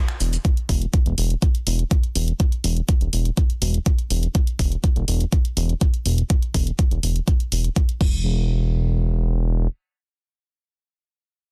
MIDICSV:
0, 0, Header, 1, 3, 480
1, 0, Start_track
1, 0, Tempo, 487805
1, 439, Time_signature, 4, 2, 24, 8
1, 11334, End_track
2, 0, Start_track
2, 0, Title_t, "Analog synth bass"
2, 0, Program_c, 0, 38
2, 201, Note_on_c, 0, 28, 84
2, 370, Note_off_c, 0, 28, 0
2, 681, Note_on_c, 0, 28, 100
2, 850, Note_off_c, 0, 28, 0
2, 1043, Note_on_c, 0, 28, 94
2, 1125, Note_off_c, 0, 28, 0
2, 1161, Note_on_c, 0, 28, 90
2, 1330, Note_off_c, 0, 28, 0
2, 1641, Note_on_c, 0, 28, 93
2, 1810, Note_off_c, 0, 28, 0
2, 2121, Note_on_c, 0, 28, 88
2, 2290, Note_off_c, 0, 28, 0
2, 2599, Note_on_c, 0, 28, 101
2, 2769, Note_off_c, 0, 28, 0
2, 2962, Note_on_c, 0, 28, 94
2, 3044, Note_off_c, 0, 28, 0
2, 3080, Note_on_c, 0, 28, 92
2, 3250, Note_off_c, 0, 28, 0
2, 3558, Note_on_c, 0, 28, 94
2, 3729, Note_off_c, 0, 28, 0
2, 4039, Note_on_c, 0, 28, 88
2, 4209, Note_off_c, 0, 28, 0
2, 4520, Note_on_c, 0, 28, 96
2, 4689, Note_off_c, 0, 28, 0
2, 4881, Note_on_c, 0, 28, 95
2, 4964, Note_off_c, 0, 28, 0
2, 4999, Note_on_c, 0, 28, 88
2, 5169, Note_off_c, 0, 28, 0
2, 5480, Note_on_c, 0, 28, 90
2, 5649, Note_off_c, 0, 28, 0
2, 5959, Note_on_c, 0, 28, 82
2, 6129, Note_off_c, 0, 28, 0
2, 6440, Note_on_c, 0, 28, 99
2, 6609, Note_off_c, 0, 28, 0
2, 6802, Note_on_c, 0, 28, 93
2, 6884, Note_off_c, 0, 28, 0
2, 6920, Note_on_c, 0, 28, 87
2, 7089, Note_off_c, 0, 28, 0
2, 7400, Note_on_c, 0, 28, 93
2, 7569, Note_off_c, 0, 28, 0
2, 7879, Note_on_c, 0, 28, 94
2, 9520, Note_off_c, 0, 28, 0
2, 11334, End_track
3, 0, Start_track
3, 0, Title_t, "Drums"
3, 83, Note_on_c, 9, 26, 64
3, 83, Note_on_c, 9, 42, 38
3, 181, Note_off_c, 9, 26, 0
3, 181, Note_off_c, 9, 42, 0
3, 201, Note_on_c, 9, 46, 102
3, 201, Note_on_c, 9, 82, 68
3, 299, Note_off_c, 9, 46, 0
3, 300, Note_off_c, 9, 82, 0
3, 323, Note_on_c, 9, 42, 36
3, 324, Note_on_c, 9, 82, 41
3, 422, Note_off_c, 9, 42, 0
3, 422, Note_off_c, 9, 82, 0
3, 441, Note_on_c, 9, 36, 112
3, 441, Note_on_c, 9, 42, 79
3, 539, Note_off_c, 9, 36, 0
3, 539, Note_off_c, 9, 42, 0
3, 563, Note_on_c, 9, 42, 36
3, 661, Note_off_c, 9, 42, 0
3, 680, Note_on_c, 9, 46, 102
3, 681, Note_on_c, 9, 36, 58
3, 778, Note_off_c, 9, 46, 0
3, 779, Note_off_c, 9, 36, 0
3, 803, Note_on_c, 9, 42, 36
3, 901, Note_off_c, 9, 42, 0
3, 920, Note_on_c, 9, 42, 90
3, 921, Note_on_c, 9, 36, 111
3, 1018, Note_off_c, 9, 42, 0
3, 1019, Note_off_c, 9, 36, 0
3, 1043, Note_on_c, 9, 42, 35
3, 1141, Note_off_c, 9, 42, 0
3, 1160, Note_on_c, 9, 46, 98
3, 1258, Note_off_c, 9, 46, 0
3, 1283, Note_on_c, 9, 42, 34
3, 1381, Note_off_c, 9, 42, 0
3, 1400, Note_on_c, 9, 36, 112
3, 1400, Note_on_c, 9, 42, 84
3, 1498, Note_off_c, 9, 42, 0
3, 1499, Note_off_c, 9, 36, 0
3, 1522, Note_on_c, 9, 42, 35
3, 1621, Note_off_c, 9, 42, 0
3, 1640, Note_on_c, 9, 46, 101
3, 1738, Note_off_c, 9, 46, 0
3, 1762, Note_on_c, 9, 42, 36
3, 1861, Note_off_c, 9, 42, 0
3, 1880, Note_on_c, 9, 36, 113
3, 1880, Note_on_c, 9, 42, 81
3, 1979, Note_off_c, 9, 36, 0
3, 1979, Note_off_c, 9, 42, 0
3, 2002, Note_on_c, 9, 42, 35
3, 2101, Note_off_c, 9, 42, 0
3, 2120, Note_on_c, 9, 46, 99
3, 2218, Note_off_c, 9, 46, 0
3, 2242, Note_on_c, 9, 42, 35
3, 2340, Note_off_c, 9, 42, 0
3, 2360, Note_on_c, 9, 36, 106
3, 2360, Note_on_c, 9, 42, 83
3, 2458, Note_off_c, 9, 42, 0
3, 2459, Note_off_c, 9, 36, 0
3, 2482, Note_on_c, 9, 42, 37
3, 2580, Note_off_c, 9, 42, 0
3, 2599, Note_on_c, 9, 46, 100
3, 2697, Note_off_c, 9, 46, 0
3, 2721, Note_on_c, 9, 42, 39
3, 2820, Note_off_c, 9, 42, 0
3, 2839, Note_on_c, 9, 42, 92
3, 2840, Note_on_c, 9, 36, 109
3, 2937, Note_off_c, 9, 42, 0
3, 2939, Note_off_c, 9, 36, 0
3, 2962, Note_on_c, 9, 42, 37
3, 3060, Note_off_c, 9, 42, 0
3, 3079, Note_on_c, 9, 46, 92
3, 3178, Note_off_c, 9, 46, 0
3, 3202, Note_on_c, 9, 42, 38
3, 3300, Note_off_c, 9, 42, 0
3, 3319, Note_on_c, 9, 42, 86
3, 3320, Note_on_c, 9, 36, 114
3, 3418, Note_off_c, 9, 36, 0
3, 3418, Note_off_c, 9, 42, 0
3, 3442, Note_on_c, 9, 42, 36
3, 3540, Note_off_c, 9, 42, 0
3, 3560, Note_on_c, 9, 46, 100
3, 3658, Note_off_c, 9, 46, 0
3, 3682, Note_on_c, 9, 42, 36
3, 3780, Note_off_c, 9, 42, 0
3, 3799, Note_on_c, 9, 42, 89
3, 3800, Note_on_c, 9, 36, 111
3, 3898, Note_off_c, 9, 36, 0
3, 3898, Note_off_c, 9, 42, 0
3, 3922, Note_on_c, 9, 42, 37
3, 4020, Note_off_c, 9, 42, 0
3, 4039, Note_on_c, 9, 46, 95
3, 4137, Note_off_c, 9, 46, 0
3, 4161, Note_on_c, 9, 42, 37
3, 4260, Note_off_c, 9, 42, 0
3, 4279, Note_on_c, 9, 42, 84
3, 4280, Note_on_c, 9, 36, 105
3, 4377, Note_off_c, 9, 42, 0
3, 4378, Note_off_c, 9, 36, 0
3, 4401, Note_on_c, 9, 42, 38
3, 4500, Note_off_c, 9, 42, 0
3, 4519, Note_on_c, 9, 46, 94
3, 4520, Note_on_c, 9, 36, 53
3, 4617, Note_off_c, 9, 46, 0
3, 4618, Note_off_c, 9, 36, 0
3, 4642, Note_on_c, 9, 42, 37
3, 4740, Note_off_c, 9, 42, 0
3, 4759, Note_on_c, 9, 42, 95
3, 4760, Note_on_c, 9, 36, 107
3, 4858, Note_off_c, 9, 36, 0
3, 4858, Note_off_c, 9, 42, 0
3, 4882, Note_on_c, 9, 42, 38
3, 4980, Note_off_c, 9, 42, 0
3, 4998, Note_on_c, 9, 46, 92
3, 5097, Note_off_c, 9, 46, 0
3, 5121, Note_on_c, 9, 42, 37
3, 5220, Note_off_c, 9, 42, 0
3, 5239, Note_on_c, 9, 42, 90
3, 5240, Note_on_c, 9, 36, 104
3, 5338, Note_off_c, 9, 36, 0
3, 5338, Note_off_c, 9, 42, 0
3, 5362, Note_on_c, 9, 42, 40
3, 5461, Note_off_c, 9, 42, 0
3, 5480, Note_on_c, 9, 46, 94
3, 5578, Note_off_c, 9, 46, 0
3, 5602, Note_on_c, 9, 42, 37
3, 5701, Note_off_c, 9, 42, 0
3, 5719, Note_on_c, 9, 42, 87
3, 5720, Note_on_c, 9, 36, 109
3, 5818, Note_off_c, 9, 36, 0
3, 5818, Note_off_c, 9, 42, 0
3, 5842, Note_on_c, 9, 42, 40
3, 5940, Note_off_c, 9, 42, 0
3, 5959, Note_on_c, 9, 46, 95
3, 6057, Note_off_c, 9, 46, 0
3, 6082, Note_on_c, 9, 42, 37
3, 6180, Note_off_c, 9, 42, 0
3, 6199, Note_on_c, 9, 42, 85
3, 6200, Note_on_c, 9, 36, 100
3, 6297, Note_off_c, 9, 42, 0
3, 6298, Note_off_c, 9, 36, 0
3, 6322, Note_on_c, 9, 42, 39
3, 6420, Note_off_c, 9, 42, 0
3, 6439, Note_on_c, 9, 46, 96
3, 6440, Note_on_c, 9, 36, 57
3, 6537, Note_off_c, 9, 46, 0
3, 6538, Note_off_c, 9, 36, 0
3, 6562, Note_on_c, 9, 42, 38
3, 6660, Note_off_c, 9, 42, 0
3, 6680, Note_on_c, 9, 36, 103
3, 6680, Note_on_c, 9, 42, 94
3, 6778, Note_off_c, 9, 36, 0
3, 6778, Note_off_c, 9, 42, 0
3, 6803, Note_on_c, 9, 42, 38
3, 6901, Note_off_c, 9, 42, 0
3, 6920, Note_on_c, 9, 46, 92
3, 7018, Note_off_c, 9, 46, 0
3, 7042, Note_on_c, 9, 42, 38
3, 7141, Note_off_c, 9, 42, 0
3, 7159, Note_on_c, 9, 36, 110
3, 7160, Note_on_c, 9, 42, 90
3, 7258, Note_off_c, 9, 36, 0
3, 7258, Note_off_c, 9, 42, 0
3, 7283, Note_on_c, 9, 42, 40
3, 7381, Note_off_c, 9, 42, 0
3, 7400, Note_on_c, 9, 46, 93
3, 7498, Note_off_c, 9, 46, 0
3, 7522, Note_on_c, 9, 42, 38
3, 7620, Note_off_c, 9, 42, 0
3, 7639, Note_on_c, 9, 36, 106
3, 7639, Note_on_c, 9, 42, 89
3, 7737, Note_off_c, 9, 36, 0
3, 7738, Note_off_c, 9, 42, 0
3, 7762, Note_on_c, 9, 42, 38
3, 7860, Note_off_c, 9, 42, 0
3, 7879, Note_on_c, 9, 36, 101
3, 7879, Note_on_c, 9, 49, 77
3, 7977, Note_off_c, 9, 36, 0
3, 7978, Note_off_c, 9, 49, 0
3, 11334, End_track
0, 0, End_of_file